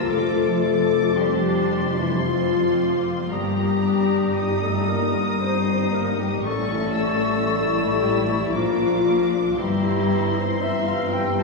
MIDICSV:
0, 0, Header, 1, 11, 480
1, 0, Start_track
1, 0, Key_signature, -1, "minor"
1, 0, Tempo, 1067616
1, 39, Time_signature, 3, 2, 24, 8
1, 1958, Tempo, 1043478
1, 5213, End_track
2, 0, Start_track
2, 0, Title_t, "Flute section"
2, 0, Program_c, 0, 73
2, 31, Note_on_c, 0, 86, 71
2, 982, Note_off_c, 0, 86, 0
2, 999, Note_on_c, 0, 86, 67
2, 1472, Note_off_c, 0, 86, 0
2, 1477, Note_on_c, 0, 87, 67
2, 2797, Note_off_c, 0, 87, 0
2, 2915, Note_on_c, 0, 85, 74
2, 3860, Note_off_c, 0, 85, 0
2, 3881, Note_on_c, 0, 86, 67
2, 4359, Note_on_c, 0, 88, 70
2, 4360, Note_off_c, 0, 86, 0
2, 4827, Note_off_c, 0, 88, 0
2, 4832, Note_on_c, 0, 88, 65
2, 5213, Note_off_c, 0, 88, 0
2, 5213, End_track
3, 0, Start_track
3, 0, Title_t, "Violin section"
3, 0, Program_c, 1, 48
3, 38, Note_on_c, 1, 86, 58
3, 276, Note_off_c, 1, 86, 0
3, 282, Note_on_c, 1, 86, 64
3, 520, Note_off_c, 1, 86, 0
3, 522, Note_on_c, 1, 84, 61
3, 1483, Note_off_c, 1, 84, 0
3, 1489, Note_on_c, 1, 82, 62
3, 1952, Note_on_c, 1, 87, 63
3, 1960, Note_off_c, 1, 82, 0
3, 2913, Note_off_c, 1, 87, 0
3, 2915, Note_on_c, 1, 85, 60
3, 3149, Note_off_c, 1, 85, 0
3, 3149, Note_on_c, 1, 88, 61
3, 3862, Note_off_c, 1, 88, 0
3, 3875, Note_on_c, 1, 86, 58
3, 4347, Note_off_c, 1, 86, 0
3, 4360, Note_on_c, 1, 84, 58
3, 5213, Note_off_c, 1, 84, 0
3, 5213, End_track
4, 0, Start_track
4, 0, Title_t, "Oboe"
4, 0, Program_c, 2, 68
4, 38, Note_on_c, 2, 81, 69
4, 985, Note_off_c, 2, 81, 0
4, 1004, Note_on_c, 2, 81, 71
4, 1354, Note_off_c, 2, 81, 0
4, 1491, Note_on_c, 2, 82, 65
4, 2900, Note_off_c, 2, 82, 0
4, 2928, Note_on_c, 2, 81, 73
4, 3867, Note_off_c, 2, 81, 0
4, 3890, Note_on_c, 2, 82, 71
4, 4234, Note_off_c, 2, 82, 0
4, 4367, Note_on_c, 2, 82, 68
4, 4822, Note_off_c, 2, 82, 0
4, 4838, Note_on_c, 2, 82, 66
4, 5213, Note_off_c, 2, 82, 0
4, 5213, End_track
5, 0, Start_track
5, 0, Title_t, "Clarinet"
5, 0, Program_c, 3, 71
5, 37, Note_on_c, 3, 69, 90
5, 526, Note_on_c, 3, 67, 81
5, 533, Note_off_c, 3, 69, 0
5, 889, Note_on_c, 3, 64, 77
5, 896, Note_off_c, 3, 67, 0
5, 1006, Note_off_c, 3, 64, 0
5, 1010, Note_on_c, 3, 65, 80
5, 1357, Note_off_c, 3, 65, 0
5, 1486, Note_on_c, 3, 67, 83
5, 2083, Note_on_c, 3, 69, 71
5, 2090, Note_off_c, 3, 67, 0
5, 2202, Note_on_c, 3, 70, 82
5, 2209, Note_off_c, 3, 69, 0
5, 2440, Note_off_c, 3, 70, 0
5, 2442, Note_on_c, 3, 72, 81
5, 2690, Note_on_c, 3, 70, 74
5, 2697, Note_off_c, 3, 72, 0
5, 2808, Note_on_c, 3, 67, 79
5, 2815, Note_off_c, 3, 70, 0
5, 2928, Note_on_c, 3, 69, 92
5, 2935, Note_off_c, 3, 67, 0
5, 3643, Note_on_c, 3, 67, 79
5, 3650, Note_off_c, 3, 69, 0
5, 3766, Note_on_c, 3, 64, 76
5, 3773, Note_off_c, 3, 67, 0
5, 3881, Note_on_c, 3, 65, 78
5, 3888, Note_off_c, 3, 64, 0
5, 4237, Note_off_c, 3, 65, 0
5, 4360, Note_on_c, 3, 67, 80
5, 4723, Note_on_c, 3, 72, 83
5, 4730, Note_off_c, 3, 67, 0
5, 4838, Note_on_c, 3, 76, 78
5, 4845, Note_off_c, 3, 72, 0
5, 4957, Note_on_c, 3, 77, 86
5, 4964, Note_off_c, 3, 76, 0
5, 5073, Note_on_c, 3, 79, 84
5, 5080, Note_off_c, 3, 77, 0
5, 5195, Note_on_c, 3, 81, 85
5, 5202, Note_off_c, 3, 79, 0
5, 5213, Note_off_c, 3, 81, 0
5, 5213, End_track
6, 0, Start_track
6, 0, Title_t, "Violin section"
6, 0, Program_c, 4, 48
6, 39, Note_on_c, 4, 69, 78
6, 517, Note_on_c, 4, 67, 67
6, 524, Note_off_c, 4, 69, 0
6, 878, Note_on_c, 4, 64, 67
6, 880, Note_off_c, 4, 67, 0
6, 998, Note_off_c, 4, 64, 0
6, 1009, Note_on_c, 4, 65, 77
6, 1487, Note_off_c, 4, 65, 0
6, 1492, Note_on_c, 4, 67, 77
6, 2078, Note_on_c, 4, 69, 63
6, 2081, Note_off_c, 4, 67, 0
6, 2197, Note_off_c, 4, 69, 0
6, 2201, Note_on_c, 4, 70, 63
6, 2439, Note_off_c, 4, 70, 0
6, 2442, Note_on_c, 4, 72, 77
6, 2673, Note_on_c, 4, 70, 68
6, 2675, Note_off_c, 4, 72, 0
6, 2791, Note_on_c, 4, 67, 67
6, 2794, Note_off_c, 4, 70, 0
6, 2913, Note_off_c, 4, 67, 0
6, 2917, Note_on_c, 4, 69, 80
6, 3633, Note_on_c, 4, 67, 58
6, 3637, Note_off_c, 4, 69, 0
6, 3754, Note_off_c, 4, 67, 0
6, 3763, Note_on_c, 4, 64, 74
6, 3877, Note_on_c, 4, 65, 76
6, 3879, Note_off_c, 4, 64, 0
6, 4358, Note_off_c, 4, 65, 0
6, 4358, Note_on_c, 4, 67, 75
6, 4715, Note_on_c, 4, 72, 69
6, 4716, Note_off_c, 4, 67, 0
6, 4835, Note_off_c, 4, 72, 0
6, 4835, Note_on_c, 4, 76, 78
6, 4946, Note_on_c, 4, 77, 70
6, 4956, Note_off_c, 4, 76, 0
6, 5070, Note_on_c, 4, 79, 75
6, 5072, Note_off_c, 4, 77, 0
6, 5196, Note_off_c, 4, 79, 0
6, 5213, End_track
7, 0, Start_track
7, 0, Title_t, "Viola section"
7, 0, Program_c, 5, 48
7, 0, Note_on_c, 5, 65, 81
7, 504, Note_off_c, 5, 65, 0
7, 521, Note_on_c, 5, 62, 73
7, 1002, Note_off_c, 5, 62, 0
7, 1002, Note_on_c, 5, 60, 64
7, 1474, Note_off_c, 5, 60, 0
7, 1485, Note_on_c, 5, 58, 66
7, 1722, Note_off_c, 5, 58, 0
7, 1728, Note_on_c, 5, 62, 68
7, 1960, Note_off_c, 5, 62, 0
7, 1964, Note_on_c, 5, 63, 62
7, 2434, Note_off_c, 5, 63, 0
7, 2440, Note_on_c, 5, 63, 65
7, 2907, Note_off_c, 5, 63, 0
7, 2923, Note_on_c, 5, 61, 74
7, 3398, Note_off_c, 5, 61, 0
7, 3399, Note_on_c, 5, 64, 72
7, 3881, Note_off_c, 5, 64, 0
7, 3885, Note_on_c, 5, 62, 66
7, 4120, Note_off_c, 5, 62, 0
7, 4126, Note_on_c, 5, 62, 67
7, 4357, Note_off_c, 5, 62, 0
7, 4366, Note_on_c, 5, 64, 78
7, 4840, Note_off_c, 5, 64, 0
7, 4843, Note_on_c, 5, 60, 72
7, 5213, Note_off_c, 5, 60, 0
7, 5213, End_track
8, 0, Start_track
8, 0, Title_t, "French horn section"
8, 0, Program_c, 6, 60
8, 35, Note_on_c, 6, 57, 86
8, 522, Note_off_c, 6, 57, 0
8, 526, Note_on_c, 6, 55, 76
8, 885, Note_off_c, 6, 55, 0
8, 889, Note_on_c, 6, 52, 59
8, 1005, Note_on_c, 6, 53, 74
8, 1006, Note_off_c, 6, 52, 0
8, 1407, Note_off_c, 6, 53, 0
8, 1483, Note_on_c, 6, 55, 77
8, 2064, Note_off_c, 6, 55, 0
8, 2076, Note_on_c, 6, 57, 68
8, 2194, Note_off_c, 6, 57, 0
8, 2202, Note_on_c, 6, 58, 67
8, 2440, Note_off_c, 6, 58, 0
8, 2441, Note_on_c, 6, 60, 74
8, 2672, Note_on_c, 6, 58, 75
8, 2679, Note_off_c, 6, 60, 0
8, 2794, Note_off_c, 6, 58, 0
8, 2795, Note_on_c, 6, 55, 64
8, 2915, Note_off_c, 6, 55, 0
8, 2919, Note_on_c, 6, 57, 86
8, 3624, Note_off_c, 6, 57, 0
8, 3645, Note_on_c, 6, 55, 68
8, 3762, Note_off_c, 6, 55, 0
8, 3773, Note_on_c, 6, 52, 61
8, 3886, Note_off_c, 6, 52, 0
8, 3887, Note_on_c, 6, 53, 75
8, 4356, Note_on_c, 6, 55, 77
8, 4362, Note_off_c, 6, 53, 0
8, 4639, Note_off_c, 6, 55, 0
8, 4717, Note_on_c, 6, 60, 70
8, 4834, Note_off_c, 6, 60, 0
8, 4838, Note_on_c, 6, 64, 75
8, 4954, Note_on_c, 6, 65, 69
8, 4957, Note_off_c, 6, 64, 0
8, 5074, Note_on_c, 6, 67, 67
8, 5076, Note_off_c, 6, 65, 0
8, 5197, Note_off_c, 6, 67, 0
8, 5213, End_track
9, 0, Start_track
9, 0, Title_t, "Bassoon"
9, 0, Program_c, 7, 70
9, 44, Note_on_c, 7, 53, 67
9, 988, Note_off_c, 7, 53, 0
9, 1007, Note_on_c, 7, 53, 57
9, 1356, Note_off_c, 7, 53, 0
9, 1489, Note_on_c, 7, 55, 57
9, 2899, Note_off_c, 7, 55, 0
9, 2922, Note_on_c, 7, 55, 59
9, 3887, Note_on_c, 7, 53, 64
9, 3894, Note_off_c, 7, 55, 0
9, 4240, Note_off_c, 7, 53, 0
9, 4366, Note_on_c, 7, 52, 56
9, 4821, Note_off_c, 7, 52, 0
9, 4842, Note_on_c, 7, 52, 70
9, 5213, Note_off_c, 7, 52, 0
9, 5213, End_track
10, 0, Start_track
10, 0, Title_t, "Cello section"
10, 0, Program_c, 8, 48
10, 40, Note_on_c, 8, 41, 66
10, 1467, Note_off_c, 8, 41, 0
10, 1488, Note_on_c, 8, 43, 62
10, 2899, Note_off_c, 8, 43, 0
10, 2921, Note_on_c, 8, 45, 68
10, 3863, Note_off_c, 8, 45, 0
10, 3880, Note_on_c, 8, 46, 72
10, 4359, Note_off_c, 8, 46, 0
10, 4365, Note_on_c, 8, 43, 65
10, 5213, Note_off_c, 8, 43, 0
10, 5213, End_track
11, 0, Start_track
11, 0, Title_t, "Double bass section"
11, 0, Program_c, 10, 48
11, 41, Note_on_c, 10, 29, 79
11, 1467, Note_off_c, 10, 29, 0
11, 1485, Note_on_c, 10, 31, 67
11, 2897, Note_off_c, 10, 31, 0
11, 2919, Note_on_c, 10, 33, 72
11, 3862, Note_off_c, 10, 33, 0
11, 3888, Note_on_c, 10, 34, 68
11, 4363, Note_off_c, 10, 34, 0
11, 4363, Note_on_c, 10, 31, 75
11, 5213, Note_off_c, 10, 31, 0
11, 5213, End_track
0, 0, End_of_file